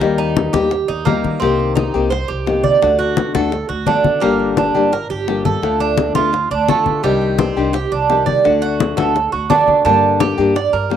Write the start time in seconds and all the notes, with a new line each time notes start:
Already playing: A#4
0.00 D#2 D#3 G3 A#3 D#4 G4, high bongo, high conga
0.18 D#4, high bongo, high conga
0.37 high bongo, high conga
0.53 D#2 G3 A#3 D#4 G4, high conga
0.71 muted nylon-string guitar stroke, high bongo, high conga
0.88 D#2 D#4, high bongo, high conga
1.05 G3 A#3 D#4 G4, high bongo, low bongo, high conga
1.24 D#3, high bongo, high conga
1.40 C2 C3 D#3 A#3 C4 G4, high bongo, high conga
1.60 high conga
1.75 D#4, high bongo, high conga
1.94 C2 D#3 A#3 C4 G4, high conga
2.10 C5, muted nylon-string guitar stroke, high bongo, high conga
2.28 C2 G4, high conga
2.46 D#3 A#3 C4 G4, high bongo, low bongo, high conga
2.64 C3 D5, high conga
2.82 D2 D3 A3 D4 F#4, high bongo, high conga
2.99 F#4, high bongo, high conga
3.17 high bongo, high conga
3.34 D2 A3 D4 F#4 A4, high conga
3.52 muted nylon-string guitar stroke, high bongo, high conga
3.69 D2 F#4, high bongo, high conga
3.87 D3 A3 D4 F#4, high bongo, low bongo, high conga
4.04 D3, high bongo, high conga
4.21 G1 D3 G3 A#3 D4 G4, high bongo, high conga
4.40 high conga
4.57 D4, high bongo, high conga
4.75 G1 G3 A#3 D4 G4, high conga
4.93 A#4, muted nylon-string guitar stroke, high bongo, high conga
5.10 G1 G4, high conga
5.28 G3 A#3 D4 G4, high bongo, low bongo, high conga
5.45 G2 A4, high conga
5.62 D2 D3 A3 D4 F4, high bongo, high conga
5.80 D4, high bongo, high conga
5.98 high bongo, high conga
6.15 D2 A3 D4 F4, high conga
6.33 muted nylon-string guitar stroke, high bongo, high conga
6.51 D2 D4, high bongo, high conga
6.68 D3 A3 D4 F4, high bongo, low bongo, high conga
6.86 D3, high bongo, high conga
7.03 C2 C3 D#3 G3 D4 G4, high bongo, high conga
7.21 high conga
7.38 C4, high bongo, high conga
7.56 C2 D#3 G3 D4 G4, high conga
7.73 G4, muted nylon-string guitar stroke, high bongo, high conga
7.92 C2 D4, high conga
8.09 D#3 G3 D4 G4, high bongo, low bongo, high conga
8.26 C3 D5, high conga
8.44 D2 D3 A3 D4 F#4, high bongo, high conga
8.62 F#4, high bongo, high conga
8.80 high bongo, high conga
8.97 D2 A3 D4 F#4 A4, high conga
9.15 muted nylon-string guitar stroke, high bongo, high conga
9.32 D2 F#4, high bongo, high conga
9.50 D3 A3 D4 F#4, high bongo, low bongo, high conga
9.68 D3, high bongo, high conga
9.85 G2 D3 G3 A#3 D4 G4, high bongo, high conga
10.03 high conga
10.20 G4, high bongo, high conga
10.38 G2 G3 A#3 D4 G4, high conga
10.55 D5, muted nylon-string guitar stroke, high bongo, high conga
10.73 G2 A#4, high conga
10.90 G3 A#3 D4 G4, high bongo, low bongo, high conga